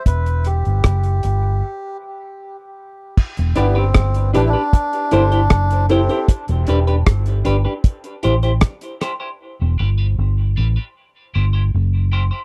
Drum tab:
CC |----------------|x---------------|----------------|----------------|
HH |xxxxxxx---------|-xx-xxx-xxxxxxxx|xxxxxxx-xxxxxxx-|----------------|
SD |----r-----------|----r-------r---|----r-------r-r-|----------------|
BD |o---o-----------|o---o---o---o---|o---o---o---o---|----------------|